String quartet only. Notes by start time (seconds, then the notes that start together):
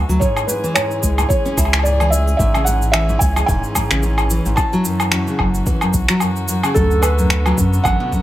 Already playing: D3 B3 F#4
0.21 E3 G#3 C#4 G#4
2.39 E3
4.57 F#4
6.76 D3 B3